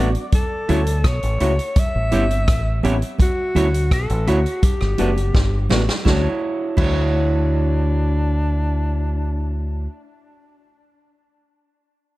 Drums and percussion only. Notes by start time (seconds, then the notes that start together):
0.15 closed hi-hat
0.32 kick, closed hi-hat, low conga
0.69 closed hi-hat, high conga, low conga
0.86 closed hi-hat
1.04 kick, cross-stick, closed hi-hat
1.23 closed hi-hat
1.40 closed hi-hat
1.59 closed hi-hat
1.76 kick, closed hi-hat, low conga
2.12 closed hi-hat, low conga
2.31 closed hi-hat, high conga
2.48 kick, cross-stick, closed hi-hat, high conga
2.83 closed hi-hat, high conga, low conga
3.02 closed hi-hat
3.18 kick, closed hi-hat, low conga
3.55 closed hi-hat, high conga, low conga
3.74 closed hi-hat
3.91 kick, cross-stick, closed hi-hat
4.09 closed hi-hat
4.27 closed hi-hat
4.46 closed hi-hat
4.62 kick, closed hi-hat, low conga
4.81 cross-stick
4.98 closed hi-hat, low conga
5.16 closed hi-hat, high conga
5.33 kick, snare, high conga
5.70 snare, high conga, low conga
5.89 snare
6.05 kick, snare, low conga
6.77 kick, crash, low conga